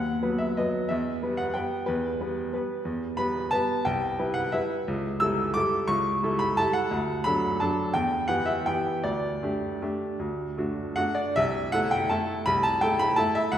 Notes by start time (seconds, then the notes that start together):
Already playing: D#2 F#5
0.22 F#3 B3 B4
0.38 E5
0.57 F#3 B3 B4 D#5
0.89 E2 E5
1.22 G3 B3 B4
1.37 F#5
1.54 G3 B3 B4 G5
1.86 E2 B4
2.20 G3 B3 B4
2.53 G3 B3 B4
2.85 E2
3.17 G3 B3 B4 B5
3.51 G3 B3 B4 A5
3.85 C2 G5
4.19 G3 E4 B4
4.34 F#5
4.52 G3 E4 B4 E5
4.88 C#2
5.20 G3 E4 A4 E6
5.54 G3 E4 A4 D6
5.88 C#2 C#6
6.23 G3 E4 A4
6.39 B5
6.57 G3 E4 A4 A5
6.73 F#5
6.91 D2
7.24 F#3 D4 A4 B5
7.60 F#3 D4 A4 A5
7.94 E2 G5
8.28 E3 B3 G4 F#5
8.46 E5
8.66 E3 B3 G4 G5
9.04 D2 D5
9.43 A3 D4 G4
9.82 A3 D4 G4
10.19 D2
10.58 A3 D4 F#4
10.96 A3 D4 F#4 F#5
11.15 D5
11.36 C2 E5
11.72 A3 E4 A4 F#5
11.91 G5
12.09 A3 E4 A4 A5
12.46 C2 B5
12.63 A5
12.81 A3 E4 A4 G5
12.99 B5
13.16 A3 E4 A4 A5
13.35 E5
13.52 D2 F#5